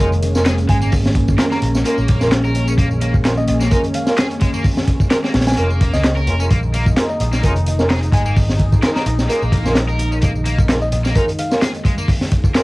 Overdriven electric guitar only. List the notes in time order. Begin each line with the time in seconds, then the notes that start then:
0.46 G#4
0.69 G#3
0.82 A#3
1.39 A#4
1.51 A#3
1.85 A#3
2.45 A#4
2.68 C#4
2.78 A#3
3.02 A#3
3.61 A#3
3.71 D#4
4.18 G#4
4.41 G#3
4.54 A#3
5.11 A#4
5.24 A#3
5.58 A#3
6.17 A#4
6.40 C#4
6.51 A#3
6.74 A#3
7.33 A#3
7.43 D#4
7.90 G#4
8.13 G#3
8.26 A#3
8.83 A#4
8.95 A#3
9.29 A#3
9.89 A#4
10.12 C#4
10.22 A#3
10.45 A#3
11.05 A#3
11.15 D#4
11.62 G#4
11.85 G#3
11.98 A#3
12.55 A#4